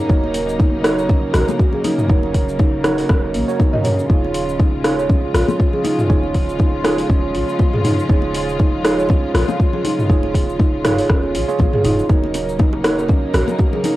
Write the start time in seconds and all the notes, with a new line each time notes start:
Already playing: C#3 F#3 A#3 D#4
0.09 D#1 D#4 F#4 A#4 C#5, kick, high conga, shaker
0.24 muted conga
0.34 open hi-hat, shaker
0.49 shaker
0.59 D#4, kick, muted conga, high conga, shaker
0.84 D#4 F#4 A#4 C#5, cross-stick, open hi-hat, shaker
0.98 C#5, shaker
1.09 A#1 C#4, kick, muted conga, low conga, shaker
1.34 A#1 F#4, cross-stick, open hi-hat, shaker
1.49 muted conga, high conga, low conga, shaker
1.59 F#4, kick, shaker
1.73 G#4, low conga
1.84 D#4, open hi-hat, muted conga, high conga, low conga, shaker
1.98 mid tom, shaker
2.08 D#1 D#4 F#4 A#4 C#5, kick, high conga, shaker
2.23 muted conga
2.35 kick, open hi-hat, shaker
2.49 shaker
2.59 D#4, kick, muted conga, high conga, shaker
2.84 D#4 F#4 A#4 C#5, cross-stick, open hi-hat, low conga, shaker
2.98 C#5, open hi-hat, shaker
3.09 D#1 C#4, kick, cross-stick, muted conga, shaker
3.34 A#1 A#3, open hi-hat, shaker
3.48 F#4 A#4 C#5, muted conga, shaker
3.59 D#4, kick, high conga, low conga, shaker
3.73 D#5, mid tom
3.84 C#5, mid tom, open hi-hat, muted conga, shaker
3.99 shaker
4.09 D#1 F3 G#3 D#4 F4 G#4 C#5, kick, high conga, shaker
4.24 muted conga
4.34 open hi-hat, shaker
4.49 shaker
4.59 D#4, kick, muted conga, high conga, shaker
4.84 D#4 F4 G#4 C#5, cross-stick, open hi-hat, shaker
4.98 C#5, shaker
5.09 A#1 C#4, kick, muted conga, low conga, shaker
5.34 A#1 F4, cross-stick, open hi-hat, shaker
5.48 muted conga, high conga, low conga, shaker
5.59 F4, kick, shaker
5.73 G#4, low conga
5.84 D#4, open hi-hat, muted conga, high conga, low conga, shaker
5.98 mid tom, shaker
6.09 D#1 D#4 F4 G#4 C#5, kick, high conga, shaker
6.23 muted conga
6.34 kick, open hi-hat, shaker
6.49 shaker
6.59 D#4, kick, muted conga, high conga, shaker
6.84 D#4 F4 G#4 C#5, cross-stick, open hi-hat, low conga, shaker
6.98 C#5, open hi-hat, shaker
7.09 D#1 C#4, kick, muted conga, shaker
7.34 A#1 F4, open hi-hat, shaker
7.48 muted conga, shaker
7.59 F4, kick, high conga, low conga, shaker
7.74 G#4, mid tom
7.85 D#4, mid tom, open hi-hat, muted conga, shaker
7.99 shaker
8.09 D#1 D#4 F4 G#4 C#5, kick, high conga, shaker
8.22 muted conga
8.35 open hi-hat, shaker
8.49 shaker
8.59 D#4, kick, muted conga, high conga, shaker
8.85 D#4 F4 G#4 C#5, cross-stick, open hi-hat, shaker
8.98 C#5, shaker
9.09 A#1 C#4, kick, muted conga, low conga, shaker
9.34 A#1 F4, cross-stick, open hi-hat, shaker
9.48 muted conga, high conga, low conga, shaker
9.60 F4, kick, shaker
9.73 G#4, low conga
9.84 D#4, open hi-hat, muted conga, high conga, low conga, shaker
9.99 mid tom, shaker
10.09 D#1 D#4 F4 G#4 C#5, kick, high conga, shaker
10.23 muted conga
10.34 kick, open hi-hat, high conga, shaker
10.49 shaker
10.59 D#4, kick, muted conga, high conga, shaker
10.84 D#4 F4 G#4 C#5, cross-stick, mid tom, open hi-hat, low conga, shaker
10.98 C#5, open hi-hat, shaker
11.10 D#1 C#4, kick, cross-stick, muted conga, shaker
11.23 high conga
11.35 A#1 F4, open hi-hat, shaker
11.48 F4 G#4 C#5, muted conga, shaker
11.59 A#1 F4, kick, high conga, low conga, shaker
11.73 G#4, mid tom
11.84 D#1 D#4, mid tom, open hi-hat, muted conga, shaker
11.99 shaker
12.09 D#1 C#3 F#3 A#3 D#4 F#4 A#4 C#5, kick, low bongo, high conga, shaker
12.24 muted conga
12.34 open hi-hat, low bongo, shaker
12.49 shaker
12.59 D#4, kick, low bongo, muted conga, high conga, shaker
12.73 high bongo
12.84 D#4 F#4 A#4 C#5, cross-stick, open hi-hat, low bongo, shaker
12.99 C#5, shaker
13.09 A#1 C#4, kick, low bongo, muted conga, low conga, shaker
13.34 A#1 F#4, cross-stick, open hi-hat, low bongo, shaker
13.48 muted conga, high conga, low conga, shaker
13.59 F#4, kick, low bongo, shaker
13.73 G#4, low conga
13.84 D#4, open hi-hat, low bongo, muted conga, high conga, low conga, shaker